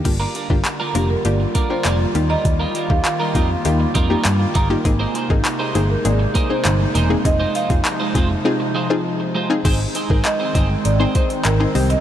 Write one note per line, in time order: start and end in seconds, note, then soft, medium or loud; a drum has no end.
0.05 0.24 G1 loud
0.05 2.13 D3 medium
0.05 4.81 G3 medium
0.05 0.37 A#3 medium
0.05 7.21 A#3 medium
0.05 0.37 D4 medium
0.05 4.81 F4 medium
0.05 0.37 F4 medium
0.05 0.37 G4 loud
0.05 muted clean electric guitar stroke soft
0.05 kick loud
0.05 closed hi-hat loud
0.05 crash medium
0.20 0.34 A#3 medium
0.20 0.34 D4 medium
0.20 0.35 F4 medium
0.20 0.35 A#4 medium
0.35 0.51 A#3 medium
0.35 0.50 D4 medium
0.35 0.49 F4 medium
0.35 0.49 A#4 medium
0.35 closed hi-hat medium
0.50 0.60 G1 medium
0.50 0.82 A#3 medium
0.50 0.82 D4 medium
0.50 0.82 F4 medium
0.50 0.82 G4 medium
0.50 muted clean electric guitar stroke soft
0.50 kick medium
0.65 muted clean electric guitar stroke soft
0.65 clap loud
0.65 closed hi-hat medium
0.80 0.94 A#3 medium
0.80 0.94 D4 medium
0.80 0.95 F4 medium
0.80 0.95 A#4 medium
0.95 1.14 F1 medium
0.95 1.11 A#3 medium
0.95 1.16 A#3 medium
0.95 1.16 D4 medium
0.95 1.10 D4 medium
0.95 1.17 F4 medium
0.95 1.09 F4 medium
0.95 1.11 G4 medium
0.95 1.17 A#4 medium
0.95 1.09 A#4 medium
0.95 closed hi-hat medium
1.10 1.26 A#4 medium
1.10 muted clean electric guitar stroke soft
1.25 1.44 G1 medium
1.25 1.57 A#3 medium
1.25 1.57 D4 medium
1.25 1.57 F4 medium
1.25 1.57 G4 medium
1.25 1.72 D5 medium
1.25 muted clean electric guitar stroke soft
1.25 closed hi-hat medium
1.40 muted clean electric guitar stroke soft
1.55 1.70 A#3 medium
1.55 1.70 D4 medium
1.55 1.69 F4 medium
1.55 1.69 A#4 medium
1.55 kick medium
1.55 closed hi-hat medium
1.70 2.13 A#3 medium
1.70 1.84 A#3 medium
1.70 2.13 D4 medium
1.70 1.84 D4 medium
1.70 2.13 F4 medium
1.70 1.85 F4 medium
1.70 2.13 G4 medium
1.70 1.85 A#4 medium
1.70 1.84 C5 medium
1.85 2.04 F1 medium
1.85 2.06 A#3 medium
1.85 2.00 D4 medium
1.85 2.00 F4 medium
1.85 1.99 A#4 medium
1.85 2.27 D5 medium
1.85 clap loud
1.85 closed hi-hat loud
2.00 muted clean electric guitar stroke soft
2.15 2.34 D#2 loud
2.15 4.83 D#3 medium
2.15 2.75 A#3 medium
2.15 2.75 D#4 medium
2.15 2.75 F4 medium
2.15 2.75 G4 medium
2.15 muted clean electric guitar stroke soft
2.15 closed hi-hat medium
2.30 2.44 G3 medium
2.30 2.44 D#4 medium
2.30 2.44 F4 medium
2.30 2.45 A#4 medium
2.30 2.92 D#5 loud
2.45 2.64 D#2 loud
2.45 muted clean electric guitar stroke soft
2.45 kick loud
2.45 closed hi-hat loud
2.60 2.74 G3 medium
2.60 2.74 D#4 medium
2.60 2.75 F4 medium
2.60 2.75 A#4 medium
2.75 2.92 G3 medium
2.75 2.90 D#4 medium
2.75 2.89 F4 medium
2.75 2.89 A#4 medium
2.75 closed hi-hat medium
2.90 3.00 D#2 medium
2.90 3.22 A#3 medium
2.90 3.22 D#4 medium
2.90 3.22 F4 medium
2.90 3.22 G4 medium
2.90 2.97 F5 loud
2.90 muted clean electric guitar stroke soft
2.90 kick loud
3.05 4.51 F5 medium
3.05 muted clean electric guitar stroke soft
3.05 clap loud
3.05 closed hi-hat medium
3.20 3.33 G3 medium
3.20 3.34 D#4 medium
3.20 3.34 F4 medium
3.20 3.35 A#4 medium
3.35 3.54 F2 medium
3.35 3.51 G3 medium
3.35 3.56 A#3 medium
3.35 3.56 D#4 medium
3.35 3.50 D#4 medium
3.35 3.57 F4 medium
3.35 3.49 F4 medium
3.35 3.57 G4 medium
3.35 3.49 A#4 medium
3.35 kick medium
3.35 closed hi-hat medium
3.50 muted clean electric guitar stroke medium
3.65 3.84 D#2 loud
3.65 3.97 A#3 medium
3.65 3.97 D#4 medium
3.65 3.97 F4 medium
3.65 3.97 G4 medium
3.65 muted clean electric guitar stroke soft
3.65 closed hi-hat medium
3.80 muted clean electric guitar stroke soft
3.95 4.14 F2 medium
3.95 4.10 G3 medium
3.95 4.09 D#4 loud
3.95 4.09 F4 loud
3.95 4.08 A#4 loud
3.95 kick medium
3.95 closed hi-hat medium
4.10 4.27 G3 medium
4.10 4.53 A#3 medium
4.10 4.53 D#4 medium
4.10 4.27 D#4 medium
4.10 4.27 F4 medium
4.10 4.53 F4 medium
4.10 4.53 G4 medium
4.10 4.26 A#4 medium
4.25 4.44 G2 loud
4.25 clap loud
4.25 closed hi-hat loud
4.40 muted clean electric guitar stroke soft
4.55 4.74 G1 medium
4.55 4.76 G3 medium
4.55 4.69 D#4 medium
4.55 4.69 F4 medium
4.55 4.68 A#4 loud
4.55 kick medium
4.55 closed hi-hat medium
4.70 4.81 A#3 medium
4.70 4.81 D#4 medium
4.70 4.81 F4 medium
4.70 4.81 G4 loud
4.70 muted clean electric guitar stroke soft
4.85 5.04 G#1 loud
4.85 7.23 C3 medium
4.85 9.61 G#3 medium
4.85 5.17 A#3 medium
4.85 5.17 C4 medium
4.85 5.17 D#4 medium
4.85 9.61 D#4 medium
4.85 5.17 G#4 loud
4.85 muted clean electric guitar stroke soft
4.85 kick loud
4.85 closed hi-hat loud
4.99 5.13 A#3 medium
4.99 5.14 D#4 medium
4.99 5.14 G#4 medium
4.99 5.15 C5 medium
5.14 5.31 A#3 medium
5.14 5.29 D#4 medium
5.14 5.29 G#4 medium
5.14 5.28 C5 medium
5.14 closed hi-hat medium
5.30 5.40 G#1 medium
5.30 5.62 A#3 medium
5.30 5.62 C4 medium
5.30 5.62 D#4 medium
5.30 5.62 G#4 loud
5.30 kick loud
5.45 muted clean electric guitar stroke soft
5.45 clap loud
5.45 closed hi-hat medium
5.59 5.73 A#3 medium
5.59 5.74 D#4 medium
5.59 5.74 G#4 medium
5.59 5.75 C5 medium
5.74 5.94 G1 medium
5.74 5.91 A#3 medium
5.74 5.96 A#3 medium
5.74 5.96 C4 medium
5.74 5.89 D#4 medium
5.74 5.97 D#4 medium
5.74 5.91 G#4 medium
5.74 5.89 G#4 medium
5.74 5.97 G#4 medium
5.74 5.88 C5 medium
5.74 closed hi-hat medium
5.89 6.04 A#4 medium
5.89 muted clean electric guitar stroke medium
6.05 6.24 G#1 loud
6.05 6.37 A#3 medium
6.05 6.37 C4 medium
6.05 6.37 D#4 medium
6.05 6.37 G#4 medium
6.05 6.52 D5 medium
6.05 muted clean electric guitar stroke soft
6.05 closed hi-hat medium
6.19 muted clean electric guitar stroke medium
6.34 6.50 A#3 medium
6.34 6.49 D#4 medium
6.34 6.49 G#4 medium
6.34 6.48 C5 loud
6.34 kick medium
6.34 closed hi-hat medium
6.49 6.93 A#3 medium
6.49 6.67 A#3 medium
6.49 6.93 C4 medium
6.49 6.93 D#4 medium
6.49 6.67 D#4 soft
6.49 6.67 G#4 medium
6.49 6.93 G#4 medium
6.49 6.66 C5 medium
6.49 7.27 C5 loud
6.65 6.84 G1 medium
6.65 clap loud
6.65 closed hi-hat loud
6.80 muted clean electric guitar stroke soft
6.95 7.14 E1 medium
6.95 7.16 A#3 medium
6.95 7.10 D#4 medium
6.95 7.09 G#4 medium
6.95 7.09 C5 medium
6.95 closed hi-hat medium
7.10 7.21 A#3 medium
7.10 7.21 C4 medium
7.10 7.21 D#4 medium
7.10 7.21 G#4 medium
7.10 muted clean electric guitar stroke soft
7.25 7.44 F1 loud
7.25 9.63 C3 medium
7.25 9.63 F3 medium
7.25 7.57 C4 medium
7.25 7.57 D#4 medium
7.25 7.57 F4 medium
7.25 7.57 G#4 medium
7.25 7.56 D#5 loud
7.25 muted clean electric guitar stroke soft
7.25 kick loud
7.25 closed hi-hat loud
7.40 7.54 G#3 medium
7.40 7.54 D#4 medium
7.40 7.55 F4 medium
7.40 7.55 C5 medium
7.55 7.72 G#3 medium
7.55 7.70 D#4 medium
7.55 7.69 F4 medium
7.55 7.69 C5 medium
7.55 8.71 F5 loud
7.55 closed hi-hat medium
7.70 7.80 F1 loud
7.70 8.02 C4 medium
7.70 8.02 D#4 medium
7.70 8.02 F4 medium
7.70 8.02 G#4 medium
7.70 muted clean electric guitar stroke soft
7.70 kick loud
7.70 closed hi-hat soft
7.85 muted clean electric guitar stroke soft
7.85 clap loud
7.85 closed hi-hat medium
8.00 8.14 G#3 medium
8.00 8.14 D#4 medium
8.00 8.15 F4 medium
8.00 8.15 C5 medium
8.15 8.34 F1 loud
8.15 8.32 G#3 medium
8.15 8.36 C4 medium
8.15 8.36 D#4 medium
8.15 8.30 D#4 medium
8.15 8.36 F4 medium
8.15 8.29 F4 medium
8.15 8.37 G#4 medium
8.15 8.29 C5 medium
8.15 kick medium
8.15 closed hi-hat medium
8.30 muted clean electric guitar stroke soft
8.45 8.77 C4 medium
8.45 8.77 D#4 medium
8.45 8.77 F4 medium
8.45 8.77 G#4 loud
8.45 muted clean electric guitar stroke soft
8.60 muted clean electric guitar stroke medium
8.75 8.96 G#3 medium
8.75 8.90 D#4 medium
8.75 8.89 F4 medium
8.75 8.89 C5 medium
8.90 9.33 C4 medium
8.90 9.33 D#4 medium
8.90 9.33 F4 medium
8.90 9.33 G#4 loud
8.90 muted clean electric guitar stroke medium
9.20 muted clean electric guitar stroke soft
9.35 9.56 G#3 medium
9.35 9.50 D#4 medium
9.35 9.49 F4 loud
9.35 9.49 C5 loud
9.50 9.61 C4 medium
9.50 9.61 D#4 medium
9.50 9.61 F4 medium
9.50 9.61 G#4 loud
9.50 muted clean electric guitar stroke soft
9.65 9.84 G#1 loud
9.65 12.00 D#3 medium
9.65 11.73 G#3 medium
9.65 9.97 C4 loud
9.65 9.86 C4 medium
9.65 12.00 C4 medium
9.65 9.97 D#4 medium
9.65 12.00 D#4 medium
9.65 9.80 D#4 medium
9.65 9.97 G#4 medium
9.65 9.79 G#4 medium
9.65 9.97 C5 loud
9.65 9.79 C5 medium
9.65 kick loud
9.65 closed hi-hat loud
9.65 crash medium
9.80 muted clean electric guitar stroke soft
9.95 10.10 C4 medium
9.95 10.10 D#4 medium
9.95 10.09 G#4 medium
9.95 10.09 C5 medium
9.95 closed hi-hat medium
10.10 10.20 G#1 loud
10.10 10.42 C4 medium
10.10 10.24 C4 medium
10.10 10.42 D#4 medium
10.10 10.24 D#4 medium
10.10 10.42 G#4 medium
10.10 10.25 G#4 medium
10.10 10.42 A#4 medium
10.10 10.25 C5 medium
10.10 kick loud
10.25 10.81 D#5 loud
10.25 muted clean electric guitar stroke soft
10.25 clap loud
10.25 closed hi-hat medium
10.40 10.53 C4 medium
10.40 10.54 D#4 medium
10.40 10.55 G#4 medium
10.40 10.55 C5 medium
10.55 10.74 G1 loud
10.55 10.76 C4 medium
10.55 10.87 C4 medium
10.55 10.87 D#4 medium
10.55 10.70 D#4 medium
10.55 10.87 G#4 medium
10.55 10.69 G#4 medium
10.55 10.87 C5 medium
10.55 10.69 C5 medium
10.55 kick loud
10.55 closed hi-hat medium
10.70 muted clean electric guitar stroke soft
10.85 11.04 G#1 loud
10.85 10.99 D5 loud
10.85 muted clean electric guitar stroke soft
10.85 closed hi-hat medium
11.00 11.43 C4 medium
11.00 11.13 C4 medium
11.00 11.43 D#4 medium
11.00 11.14 D#4 medium
11.00 11.14 G#4 medium
11.00 11.43 G#4 medium
11.00 11.15 C5 medium
11.00 11.43 C5 medium
11.15 11.31 C4 medium
11.15 11.30 D#4 medium
11.15 11.29 G#4 medium
11.15 11.46 C5 medium
11.15 11.29 C5 medium
11.15 kick loud
11.15 closed hi-hat medium
11.30 muted clean electric guitar stroke soft
11.30 closed hi-hat soft
11.45 11.64 G#1 loud
11.45 11.92 A#4 medium
11.45 muted clean electric guitar stroke soft
11.45 clap loud
11.45 closed hi-hat loud
11.60 11.74 C4 medium
11.60 11.74 D#4 medium
11.60 11.75 G#4 medium
11.60 11.74 C5 medium
11.60 muted clean electric guitar stroke soft
11.75 11.94 C2 loud
11.75 12.00 G3 medium
11.75 12.00 C4 medium
11.75 12.00 D#4 medium
11.75 12.00 G4 medium
11.75 12.00 C5 medium
11.75 open hi-hat medium
11.90 12.00 D#5 medium
11.90 muted clean electric guitar stroke medium
11.90 closed hi-hat medium